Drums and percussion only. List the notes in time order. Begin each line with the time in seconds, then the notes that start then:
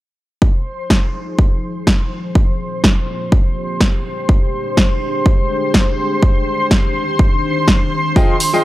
0.42 kick
0.90 kick, snare
1.39 kick
1.87 kick, snare
2.35 kick
2.84 kick, snare
3.32 kick
3.81 kick, snare
4.29 kick
4.77 kick, snare
5.26 kick
5.74 kick, snare
6.23 kick
6.71 kick, snare
7.19 kick
7.68 kick, snare
8.16 kick, tambourine
8.40 open hi-hat, tambourine
8.54 tambourine